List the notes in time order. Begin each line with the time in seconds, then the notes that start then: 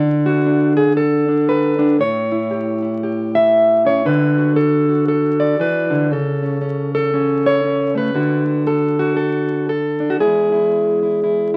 Already playing: D3 D5
0.26 F#4
0.46 D4
0.77 G#4
0.97 A4
1.28 D4
1.49 B4
1.79 D4
1.99 A2 C#5
2.32 E4
2.51 G4
2.82 E4
3.03 G4
3.35 E5
3.85 C#4 C#5
4.05 D3 B4
4.38 F#4
4.56 A4
4.89 F#4
5.08 A4
5.40 D5
5.59 E3 B4
5.90 D3
6.11 C#3 A4
6.43 C#4
6.61 C#4
6.95 A4
7.14 C#4
7.46 C#5
7.64 C#4
7.95 A3 B4
8.14 D3 F#4
8.47 F#4
8.67 A4
8.99 F#4
9.17 A4
9.69 A4
10.00 D4
10.10 F#4
10.19 E2 G#3 E4 G#4
10.52 E4
11.03 E4
11.24 E4